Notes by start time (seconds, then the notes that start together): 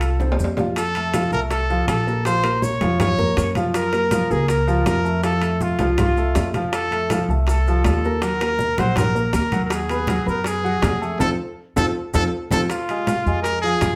Already playing: C2 F4 A4 F5
0.01 high conga, high timbale, maracas
0.20 C4 C5, low bongo, high conga, high timbale, maracas
0.32 low timbale
0.39 F2, low bongo, high conga, maracas
0.44 low timbale
0.57 F4 F5, low bongo, high conga, low timbale, maracas
0.76 A4, high bongo, high conga, high timbale, maracas
0.95 A3 A4 A5, high conga, high timbale, maracas
1.14 F3 F4 F5, high bongo, high conga, high timbale, maracas
1.32 C2 A3 A4 A#4 A5, high conga, maracas
1.50 A4, high bongo, high conga, high timbale, maracas
1.70 F3 F4 F5, high conga, maracas
1.87 A#1 A4, high bongo, low bongo, high conga, high timbale, maracas
2.07 A#3 A#4 A#5, maracas
2.25 F3 F4 C5 F5, high bongo, high conga, high timbale, maracas
2.44 A#3 A#4 A#5, high bongo, high conga, high timbale, maracas
2.62 C#5, high bongo, high conga, maracas
2.81 F2 F3 F4 F5, high bongo, high conga, high timbale, maracas
3.00 C#5, high bongo, high conga, low conga, high timbale, maracas
3.18 A#3 A#4 A#5, high conga, low conga, maracas
3.37 F#2, high bongo, low bongo, high conga, high timbale, maracas
3.55 F3 F4 F5, high bongo, high conga, high timbale, maracas
3.74 A#4, high bongo, high conga, high timbale, maracas
3.93 A#3 A#4 A#5, high conga, high timbale, maracas
4.11 F3 F4 F5, high bongo, high conga, high timbale, maracas
4.31 C#2 A#3 G#4 A#4 A#5, high conga, maracas
4.48 A#4, high bongo, high conga, high timbale, maracas
4.67 F3 F4 F5, high conga, maracas
4.86 F2 A#4, high bongo, low bongo, high conga, high timbale, low timbale, maracas
5.04 A3 A4 A5, maracas
5.23 F3 F4 A4 F5, high bongo, high conga, high timbale, maracas
5.41 A3 A4 A5, high bongo, high conga, high timbale, maracas
5.60 F4, high bongo, high conga, maracas
5.79 C2 F3 F4 F5, high bongo, high conga, high timbale, maracas
5.98 F4, high bongo, high conga, low conga, high timbale, maracas
6.16 A3 A4 A5, high conga, maracas
6.35 F2, high bongo, low bongo, high conga, high timbale, low timbale, maracas
6.54 F3 F4 F5, high bongo, high conga, high timbale, maracas
6.73 A4, high bongo, high conga, high timbale, maracas
6.91 A3 A4 A5, high conga, high timbale, maracas
7.10 F3 F4 F5, high bongo, high conga, high timbale, maracas
7.28 C2 A3 A4 A5, high conga, maracas
7.47 A4, high bongo, high conga, high timbale, maracas
7.66 F3 F4 F5, high conga, maracas
7.84 D#2 A4, high bongo, low bongo, high conga, high timbale, low timbale, maracas
8.04 A#3 A#4 A#5, maracas
8.22 F#3 F#4 A#4 F#5, high bongo, high conga, high timbale, maracas
8.40 A#3 A#4 A#5, high bongo, high conga, high timbale, maracas
8.59 high bongo, high conga, maracas
8.77 A#1 F#3 F#4 C5 F#5, high bongo, high conga, high timbale, maracas
8.96 A#4, high bongo, high conga, low conga, high timbale, maracas
9.15 A#3 A#4 A#5, high conga, maracas
9.33 D#2 A#4, high bongo, low bongo, high conga, high timbale, maracas
9.52 F#3 F#4 F#5, high bongo, high conga, high timbale, maracas
9.65 A#4
9.70 G#4, high bongo, high conga, high timbale, maracas
9.89 B3 B4 B5, high conga, high timbale, maracas
10.07 F#3 F#4 F#5, high bongo, high conga, high timbale, maracas
10.26 F#2 B3 A#4 B4 B5, high conga, maracas
10.44 G#4, high bongo, high conga, high timbale, maracas
10.63 F#3 F#4 F#5, high conga, maracas
10.82 F2, high bongo, low bongo, high conga, high timbale, low timbale, maracas
11.01 A3 A4 A5, maracas
11.19 F2 C4 F4 A4, low bongo, high conga, high timbale, maracas
11.76 F2 C4 F4 A4, low bongo, high conga, high timbale, maracas
12.14 F2 C4 F4 A4, low bongo, high conga, high timbale, maracas
12.51 F2 C4 F4 A4, low bongo, high conga, high timbale, maracas
12.70 F4, high bongo, high conga, high timbale, maracas
12.89 G#3 G#4 G#5, high conga, high timbale, maracas
13.07 F4 F5 F6, high bongo, high conga, high timbale, maracas
13.26 F2 G#3 G#4 G#5, high conga, maracas
13.43 A#4, high bongo, high conga, high timbale, maracas
13.61 F3 F4 G#4 F5, high conga, maracas
13.81 F#2, high bongo, low bongo, high conga, high timbale, maracas